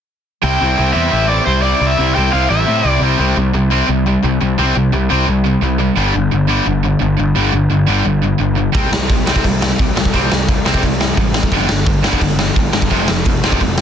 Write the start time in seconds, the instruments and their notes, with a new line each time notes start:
0.43 picked electric bass C2, distorted electric guitar C3 G3 C4 E4, overdriven electric guitar G5
0.59 picked electric bass C2, distorted electric guitar C3 G3 C4 E4
0.77 picked electric bass C2, distorted electric guitar C3 G3 C4 E4
0.93 picked electric bass E2, distorted electric guitar C3 G3 C4 E4, overdriven electric guitar E5
1.11 picked electric bass A1, distorted electric guitar C3 G3 C4 E4
1.28 distorted electric guitar C3 G3 C4 E4, overdriven electric guitar D5
1.46 picked electric bass C2, distorted electric guitar C3 G3 C4 E4, overdriven electric guitar C5
1.62 distorted electric guitar C3 G3 C4 E4, overdriven electric guitar D5
1.80 picked electric bass C2, distorted electric guitar C3 G3 C4 E4
1.87 overdriven electric guitar E5
1.98 picked electric bass C2, distorted electric guitar C3 G3 C4 E4
2.15 picked electric bass C2, distorted electric guitar C3 G3 C4 E4, overdriven electric guitar G5
2.32 picked electric bass C2, distorted electric guitar C3 G3 C4 E4, overdriven electric guitar F5
2.49 picked electric bass A1, distorted electric guitar C3 G3 C4 E4, overdriven electric guitar E5
2.66 picked electric bass A2, distorted electric guitar C3 G3 C4 E4
2.83 picked electric bass C2, distorted electric guitar C3 G3 C4 E4
3.00 picked electric bass C2, distorted electric guitar C3 G3 C4 E4
3.18 picked electric bass C2, distorted electric guitar C3 G3 C4
3.36 picked electric bass C2, distorted electric guitar C3 G3
3.53 picked electric bass C2, distorted electric guitar C3 G3
3.70 distorted electric guitar C3 G3 C4
3.87 picked electric bass C2, distorted electric guitar C3 G3
4.06 distorted electric guitar C3 G3
4.23 picked electric bass C2, distorted electric guitar C3 G3
4.41 picked electric bass C2, distorted electric guitar C3 G3
4.58 picked electric bass C2, distorted electric guitar C3 G3 C4
4.75 picked electric bass C2, distorted electric guitar C3 G3
4.93 picked electric bass C2, distorted electric guitar C3 G3
5.10 picked electric bass C2, distorted electric guitar C3 G3 C4
5.27 picked electric bass C2, distorted electric guitar C3 G3
5.46 distorted electric guitar C3 G3
5.62 picked electric bass C2, distorted electric guitar C3 G3
5.79 distorted electric guitar C3 G3
5.97 picked electric bass G1, distorted electric guitar G2 D3 G3
6.15 picked electric bass G1, distorted electric guitar G2 D3
6.32 picked electric bass G1, distorted electric guitar G2 D3
6.49 distorted electric guitar G2 D3 G3
6.66 picked electric bass G1, distorted electric guitar G2 D3
6.84 distorted electric guitar G2 D3
7.01 picked electric bass G1, distorted electric guitar G2 D3
7.19 picked electric bass G1, distorted electric guitar G2 D3
7.35 picked electric bass G1, distorted electric guitar G2 D3 G3
7.53 picked electric bass G1, distorted electric guitar G2 D3
7.70 picked electric bass G1, distorted electric guitar G2 D3
7.88 picked electric bass G1, distorted electric guitar G2 D3 G3
8.05 picked electric bass G1, distorted electric guitar G2 D3
8.23 distorted electric guitar G2 D3
8.40 picked electric bass G1, distorted electric guitar G2 D3
8.57 distorted electric guitar G2 D3
8.75 picked electric bass C2, distorted electric guitar C3 G3 C4, kick, open hi-hat
8.93 picked electric bass C2, distorted electric guitar C3 G3, snare
9.10 picked electric bass C2, distorted electric guitar C3 G3, kick, open hi-hat
9.27 distorted electric guitar C3 G3 C4, snare
9.36 kick
9.44 picked electric bass C2, distorted electric guitar C3 G3, kick, open hi-hat
9.62 distorted electric guitar C3 G3, snare
9.79 picked electric bass C2, distorted electric guitar C3 G3, kick, open hi-hat
9.96 picked electric bass C2, distorted electric guitar C3 G3, snare
10.05 kick
10.13 picked electric bass C2, distorted electric guitar C3 G3 C4, kick, open hi-hat
10.31 picked electric bass C2, distorted electric guitar C3 G3, snare
10.48 picked electric bass C2, distorted electric guitar C3 G3, kick, open hi-hat
10.65 picked electric bass C2, distorted electric guitar C3 G3 C4, snare
10.74 kick
10.83 picked electric bass C2, distorted electric guitar C3 G3, kick, open hi-hat
11.00 distorted electric guitar C3 G3, snare
11.16 picked electric bass A1, distorted electric guitar C3 G3, kick, open hi-hat
11.34 distorted electric guitar C3 G3, snare
11.43 kick
11.52 picked electric bass G1, distorted electric guitar G2 D3 G3, kick, open hi-hat
11.68 picked electric bass G1, distorted electric guitar G2 D3, snare
11.86 picked electric bass G1, distorted electric guitar G2 D3, kick, open hi-hat
12.03 distorted electric guitar G2 D3 G3, snare
12.13 kick
12.20 picked electric bass G1, distorted electric guitar G2 D3, kick, open hi-hat
12.39 distorted electric guitar G2 D3, snare
12.56 picked electric bass G1, distorted electric guitar G2 D3, kick, open hi-hat
12.73 picked electric bass G1, distorted electric guitar G2 D3, snare
12.82 kick
12.90 picked electric bass F1, distorted electric guitar F2 C3 F3, kick, open hi-hat
13.08 picked electric bass F1, distorted electric guitar F2 C3, snare
13.25 picked electric bass F1, distorted electric guitar F2 C3, kick, open hi-hat
13.43 picked electric bass F1, distorted electric guitar F2 C3 F3, snare
13.52 kick
13.60 picked electric bass F1, distorted electric guitar F2 C3, kick, open hi-hat
13.78 snare